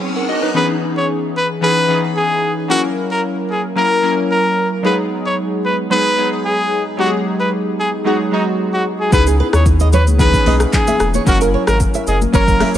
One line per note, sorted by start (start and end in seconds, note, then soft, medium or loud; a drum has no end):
0.00 0.57 F#3 medium
0.00 0.55 B3 medium
0.00 0.43 D#4 medium
0.00 0.57 G#4 loud
0.00 riser medium
0.16 0.28 A#4 medium
0.16 0.28 F#5 medium
0.29 0.42 F#4 medium
0.29 0.42 D#5 medium
0.43 0.55 D#4 medium
0.43 0.68 B4 medium
0.54 1.25 E3 medium
0.54 1.26 B3 medium
0.54 1.26 C#4 medium
0.54 1.26 D#4 medium
0.54 1.27 G#4 medium
0.54 0.67 B4 loud
0.97 1.07 C#5 medium
1.37 1.48 B4 medium
1.61 1.80 E3 medium
1.61 1.80 B3 medium
1.61 1.80 C#4 medium
1.61 1.81 D#4 medium
1.61 1.81 G#4 medium
1.61 2.01 B4 loud
1.88 2.41 E3 medium
1.88 2.42 B3 medium
1.88 2.42 C#4 medium
1.88 2.42 D#4 medium
1.88 2.43 G#4 medium
2.17 2.55 G#4 medium
2.68 3.40 F#3 medium
2.68 3.40 A#3 medium
2.68 3.40 C#4 medium
2.68 3.41 E4 medium
2.68 2.82 F#4 loud
2.68 3.41 A#4 medium
3.11 3.22 A#4 medium
3.51 3.62 G#4 medium
3.76 3.94 F#3 medium
3.76 3.94 A#3 medium
3.76 3.95 C#4 medium
3.76 3.95 E4 medium
3.76 4.16 A#4 loud
3.76 3.95 A#4 medium
4.02 4.56 F#3 medium
4.02 4.56 A#3 medium
4.02 4.56 C#4 medium
4.02 4.57 E4 medium
4.02 4.57 A#4 medium
4.31 4.69 A#4 medium
4.83 5.54 F#3 medium
4.83 5.54 G#3 medium
4.83 4.91 A#3 medium
4.83 5.55 D#4 medium
4.83 5.55 G#4 medium
4.83 4.96 B4 medium
4.90 5.58 B3 medium
5.26 5.36 C#5 medium
5.65 5.77 B4 medium
5.90 6.09 F#3 medium
5.90 6.09 G#3 medium
5.90 6.09 B3 medium
5.90 6.09 D#4 medium
5.90 6.10 G#4 medium
5.90 6.30 B4 loud
6.17 6.70 F#3 medium
6.17 6.70 G#3 medium
6.17 6.71 B3 medium
6.17 6.71 D#4 medium
6.17 6.71 G#4 medium
6.45 6.83 G#4 medium
6.97 7.68 F#3 medium
6.97 7.69 G#3 medium
6.97 7.69 B3 medium
6.97 7.69 D#4 medium
6.97 7.11 F#4 loud
6.97 7.06 G4 medium
7.06 7.73 G#4 medium
7.40 7.50 B4 medium
7.80 7.91 G#4 medium
8.04 8.23 F#3 medium
8.04 8.23 G#3 medium
8.04 8.23 B3 medium
8.04 8.24 D#4 medium
8.04 8.18 F#4 medium
8.04 8.24 G#4 medium
8.31 8.84 F#3 medium
8.31 8.85 G#3 medium
8.31 8.85 B3 medium
8.31 8.85 D#4 medium
8.31 8.45 D#4 medium
8.31 8.86 F#4 medium
8.74 8.84 F#4 medium
9.00 9.11 G#4 medium
9.12 9.42 C#2 loud
9.12 9.83 B3 medium
9.12 9.83 C#4 medium
9.12 9.84 D#4 medium
9.12 9.83 E4 medium
9.12 9.84 G#4 medium
9.12 9.25 B4 loud
9.12 kick loud
9.12 shaker medium
9.27 9.34 G#4 medium
9.27 shaker medium
9.40 9.47 B4 medium
9.53 10.08 D#2 medium
9.53 9.65 C#5 medium
9.53 cross-stick loud
9.53 shaker medium
9.66 kick medium
9.66 shaker medium
9.80 9.87 D#5 medium
9.80 shaker soft
9.93 10.05 B4 medium
9.93 10.01 C#5 medium
9.93 low conga medium
9.93 shaker medium
10.07 10.35 C#2 medium
10.07 high conga medium
10.07 shaker soft
10.18 10.37 E3 medium
10.18 10.37 B3 medium
10.18 10.38 C#4 medium
10.18 10.38 D#4 medium
10.18 10.38 G#4 medium
10.18 10.58 B4 loud
10.18 kick loud
10.18 shaker medium
10.34 kick loud
10.34 shaker medium
10.45 10.65 B1 medium
10.45 10.98 E3 medium
10.45 10.99 B3 medium
10.45 10.99 C#4 medium
10.45 10.99 D#4 medium
10.45 11.00 G#4 medium
10.45 10.54 D#5 medium
10.45 open hi-hat medium
10.45 high conga medium
10.60 cross-stick loud
10.60 shaker medium
10.73 11.12 G#4 medium
10.73 kick loud
10.73 clap medium
10.73 low conga medium
10.73 shaker medium
10.87 10.94 E5 medium
10.87 high conga medium
10.87 shaker medium
11.00 11.19 E1 medium
11.00 cross-stick loud
11.00 shaker medium
11.14 11.21 C#5 medium
11.14 high conga medium
11.14 shaker medium
11.25 11.56 F#1 loud
11.25 11.97 F#3 medium
11.25 11.97 A#3 medium
11.25 11.97 C#4 medium
11.25 11.98 E4 medium
11.25 11.39 F#4 loud
11.25 11.98 A#4 medium
11.25 kick loud
11.25 shaker medium
11.41 11.48 A#4 medium
11.41 shaker medium
11.54 11.61 C#5 medium
11.67 11.87 G#1 medium
11.67 11.79 A#4 medium
11.67 cross-stick loud
11.67 shaker medium
11.80 kick medium
11.80 shaker medium
11.94 12.01 E5 medium
11.94 shaker medium
12.07 12.26 F#1 loud
12.07 12.19 G#4 medium
12.07 12.15 D#5 medium
12.07 shaker medium
12.22 high conga medium
12.22 shaker medium
12.32 12.63 F#1 loud
12.32 12.51 F#3 medium
12.32 12.51 A#3 medium
12.32 12.52 C#4 medium
12.32 12.52 E4 medium
12.32 12.72 A#4 loud
12.32 12.52 A#4 medium
12.32 12.42 C#5 medium
12.32 kick loud
12.32 shaker medium
12.48 kick loud
12.48 shaker soft
12.59 12.78 F#3 medium
12.59 12.78 A#3 medium
12.59 12.78 C#4 medium
12.59 12.78 E4 medium
12.59 12.78 A#4 medium
12.59 12.68 E5 medium
12.59 cross-stick loud
12.59 open hi-hat medium
12.59 high conga medium
12.74 12.78 G#1 medium
12.74 shaker medium